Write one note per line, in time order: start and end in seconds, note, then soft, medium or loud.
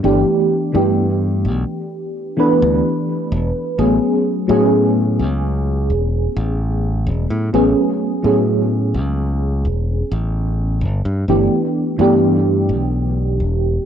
0.03 0.23 G1 loud
0.03 0.68 E3 medium
0.03 0.69 A3 medium
0.03 0.69 B3 medium
0.03 0.69 D4 medium
0.03 0.69 G4 medium
0.73 1.46 G2 medium
0.73 2.33 E3 medium
0.73 2.33 A3 medium
0.73 2.34 B3 medium
0.73 2.34 D4 medium
0.73 2.34 G4 medium
1.45 1.63 B1 medium
2.37 3.73 E3 medium
2.37 3.73 A3 medium
2.37 3.73 B3 medium
2.37 3.74 D4 medium
2.37 3.74 B4 loud
2.62 2.80 D2 loud
3.32 3.51 E1 loud
3.78 3.97 A1 loud
3.78 4.44 F#3 medium
3.78 4.44 A3 medium
3.78 4.44 B3 medium
3.78 4.44 C#4 medium
3.78 4.44 G#4 medium
4.48 5.21 A2 medium
4.48 7.47 F#3 medium
4.48 7.48 A3 medium
4.48 7.48 B3 medium
4.48 7.49 C#4 medium
4.48 7.49 G#4 loud
5.19 5.91 C#2 medium
5.90 6.27 E1 medium
6.37 7.08 A1 loud
7.07 7.25 E1 loud
7.30 7.49 A2 loud
7.53 7.72 A1 loud
7.53 8.18 F#3 medium
7.53 8.19 A3 medium
7.53 8.19 B3 medium
7.53 8.19 C#4 medium
7.53 8.19 G#4 medium
8.23 8.96 A2 medium
8.23 10.78 F#3 medium
8.23 10.79 A3 medium
8.23 10.79 B3 medium
8.23 10.80 C#4 medium
8.23 10.80 G#4 medium
8.94 9.66 C#2 medium
9.65 10.02 E1 medium
10.11 10.83 A1 loud
10.81 11.00 G1 loud
11.05 11.24 G2 medium
11.28 11.47 G1 medium
11.28 11.94 E3 medium
11.28 11.94 A3 medium
11.28 11.94 B3 medium
11.28 11.94 D4 medium
11.28 11.94 G4 medium
11.98 12.71 G2 medium
11.98 13.85 E3 medium
11.98 13.85 A3 medium
11.98 13.85 B3 medium
11.98 13.85 D4 medium
11.98 13.85 G4 loud
12.69 13.42 B1 medium
13.40 13.77 E1 medium